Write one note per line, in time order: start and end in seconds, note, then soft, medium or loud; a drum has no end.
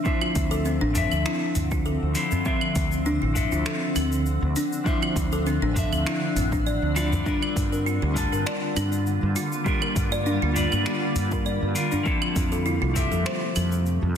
0.00 12.02 D3 medium
0.00 0.91 F3 medium
0.00 7.22 C4 medium
0.00 14.17 C4 medium
0.00 2.42 E5 loud
0.05 0.92 D4 medium
0.05 0.21 E4 medium
0.05 0.93 C5 loud
0.05 0.93 E5 medium
0.05 kick loud
0.05 shaker soft
0.21 0.35 F4 medium
0.21 claves medium
0.35 0.77 D2 medium
0.35 kick loud
0.35 open hi-hat medium
0.35 shaker medium
0.51 0.60 A4 loud
0.51 shaker soft
0.65 0.80 C4 medium
0.65 shaker soft
0.81 1.06 A1 medium
0.81 0.95 D4 loud
0.94 2.12 F3 medium
0.94 2.13 D4 medium
0.94 2.14 E5 medium
0.94 open hi-hat medium
0.94 udu loud
0.94 shaker medium
1.12 1.24 D2 medium
1.12 claves medium
1.12 shaker soft
1.25 1.41 E4 medium
1.25 finger snap medium
1.25 shaker soft
1.55 1.98 D2 medium
1.55 open hi-hat medium
1.55 udu loud
1.55 shaker medium
1.71 1.85 F4 medium
1.71 kick loud
1.71 shaker soft
1.85 2.01 A4 medium
1.85 shaker soft
2.03 2.14 D2 medium
2.15 2.42 F3 medium
2.15 2.42 D4 medium
2.15 2.43 E4 medium
2.15 2.43 C5 medium
2.15 open hi-hat loud
2.15 shaker medium
2.31 2.40 C4 medium
2.31 udu medium
2.31 shaker soft
2.44 3.32 F3 medium
2.44 2.61 C4 medium
2.44 3.32 D4 medium
2.44 7.22 D4 medium
2.44 3.34 C5 medium
2.44 3.33 E5 medium
2.44 kick loud
2.44 shaker soft
2.61 claves medium
2.75 3.17 D2 loud
2.75 kick loud
2.75 open hi-hat medium
2.75 shaker medium
2.92 shaker soft
3.06 3.21 D4 medium
3.06 shaker soft
3.22 3.47 A1 medium
3.22 3.50 E4 medium
3.34 4.82 F3 medium
3.34 4.82 D4 medium
3.34 4.83 A4 medium
3.34 4.83 E5 medium
3.34 kick medium
3.34 open hi-hat medium
3.34 udu loud
3.34 shaker medium
3.52 3.64 D2 loud
3.52 3.65 F4 medium
3.52 shaker soft
3.66 3.81 A4 medium
3.66 finger snap medium
3.66 shaker soft
3.96 4.38 D2 medium
3.96 4.55 C4 medium
3.96 open hi-hat medium
3.96 claves medium
3.96 shaker medium
4.12 shaker medium
4.26 shaker soft
4.42 4.54 D2 medium
4.56 4.71 D4 medium
4.56 open hi-hat medium
4.56 shaker medium
4.72 shaker soft
4.84 5.72 F3 medium
4.84 5.72 D4 medium
4.84 5.01 E4 medium
4.84 5.74 C5 loud
4.84 5.73 E5 medium
4.84 kick loud
4.84 shaker soft
5.02 5.16 F4 medium
5.02 claves medium
5.16 5.58 D2 loud
5.16 kick loud
5.16 open hi-hat medium
5.16 shaker medium
5.32 5.40 A4 loud
5.32 shaker soft
5.46 5.61 C4 medium
5.46 shaker soft
5.62 5.86 A1 medium
5.62 5.76 D4 medium
5.74 6.92 F3 medium
5.74 6.93 D4 medium
5.74 kick medium
5.74 open hi-hat medium
5.74 udu loud
5.74 shaker medium
5.79 6.94 E5 medium
5.92 6.04 D2 medium
5.92 claves medium
5.92 shaker soft
6.06 6.21 E4 medium
6.06 finger snap medium
6.06 shaker soft
6.36 6.78 A1 medium
6.36 6.52 C4 medium
6.36 open hi-hat medium
6.36 udu loud
6.36 shaker medium
6.52 6.65 D4 medium
6.52 kick loud
6.52 shaker medium
6.66 6.81 D5 medium
6.66 shaker soft
6.82 7.22 D2 medium
6.95 7.22 F3 medium
6.95 7.23 D4 medium
6.95 7.23 E4 medium
6.95 7.11 F4 loud
6.95 7.23 D5 medium
6.95 open hi-hat medium
6.95 shaker medium
7.13 udu loud
7.13 shaker soft
7.24 8.12 G3 medium
7.24 12.02 G3 medium
7.24 12.02 A#3 medium
7.24 8.12 D4 medium
7.24 7.41 D4 medium
7.24 12.02 F4 medium
7.24 8.13 F4 medium
7.24 kick loud
7.24 shaker soft
7.28 8.14 A#4 medium
7.43 claves medium
7.56 7.98 G2 medium
7.56 kick loud
7.56 open hi-hat medium
7.56 shaker medium
7.72 7.86 A#4 medium
7.72 shaker soft
7.86 8.01 F4 medium
7.86 shaker soft
8.02 8.27 D2 medium
8.02 8.31 G4 medium
8.14 9.62 G3 medium
8.14 9.62 D4 medium
8.14 9.63 F4 medium
8.14 kick medium
8.14 open hi-hat medium
8.14 udu medium
8.14 shaker medium
8.18 9.64 A5 medium
8.32 8.44 G2 medium
8.32 8.46 A#4 medium
8.32 shaker soft
8.46 8.61 D5 medium
8.46 finger snap medium
8.46 shaker soft
8.76 9.18 G2 medium
8.76 9.35 D4 medium
8.76 open hi-hat medium
8.76 claves medium
8.76 shaker medium
8.92 shaker soft
9.07 shaker soft
9.23 9.34 G2 medium
9.36 9.51 F4 medium
9.36 open hi-hat medium
9.36 shaker medium
9.52 shaker soft
9.64 10.52 G3 medium
9.64 10.52 D4 medium
9.64 10.53 F4 medium
9.64 9.81 G4 medium
9.64 10.54 A#4 loud
9.64 kick loud
9.64 shaker soft
9.82 9.95 A#4 medium
9.82 claves medium
9.96 10.38 G2 loud
9.96 kick loud
9.96 open hi-hat medium
9.96 shaker medium
10.12 10.20 D5 loud
10.12 shaker soft
10.26 10.40 D4 medium
10.26 shaker soft
10.42 10.67 D2 medium
10.42 10.55 F4 loud
10.54 11.72 G3 medium
10.54 11.73 D4 medium
10.54 11.74 F4 medium
10.54 11.74 D5 medium
10.54 open hi-hat medium
10.54 udu medium
10.54 shaker medium
10.72 10.84 G2 loud
10.72 claves medium
10.72 shaker soft
10.86 11.01 G4 medium
10.86 finger snap medium
10.86 shaker soft
11.16 11.58 G2 medium
11.16 open hi-hat medium
11.16 udu medium
11.16 shaker medium
11.31 11.45 A#4 medium
11.31 kick loud
11.31 shaker soft
11.46 11.61 D5 medium
11.46 shaker soft
11.62 11.74 G2 medium
11.75 12.02 G3 medium
11.75 12.02 D4 medium
11.75 12.03 F4 medium
11.75 12.03 A#4 medium
11.75 open hi-hat loud
11.75 shaker medium
11.92 12.00 D4 medium
11.92 udu medium
11.92 shaker soft
12.03 14.17 C3 medium
12.03 12.91 F3 medium
12.03 14.17 F3 medium
12.03 14.17 A3 medium
12.03 12.92 C4 medium
12.03 12.21 C4 medium
12.03 12.93 E4 medium
12.03 kick loud
12.03 shaker soft
12.07 12.93 A4 medium
12.22 claves medium
12.36 12.78 F2 loud
12.36 kick loud
12.36 open hi-hat loud
12.36 shaker medium
12.52 12.65 A4 medium
12.52 shaker soft
12.66 12.81 E4 medium
12.66 shaker soft
12.82 13.07 C2 loud
12.82 13.10 F4 medium
12.94 14.17 F3 medium
12.94 14.17 C4 medium
12.94 14.17 G4 medium
12.94 14.17 E5 medium
12.94 kick medium
12.94 open hi-hat loud
12.94 udu medium
12.94 shaker medium
13.12 13.24 F2 medium
13.12 13.25 A4 medium
13.12 shaker soft
13.26 13.41 C5 medium
13.26 finger snap medium
13.26 shaker soft
13.56 13.98 F2 medium
13.56 14.15 C4 medium
13.56 open hi-hat medium
13.56 claves medium
13.56 shaker medium
13.72 shaker soft
13.86 shaker soft
14.03 14.14 F2 medium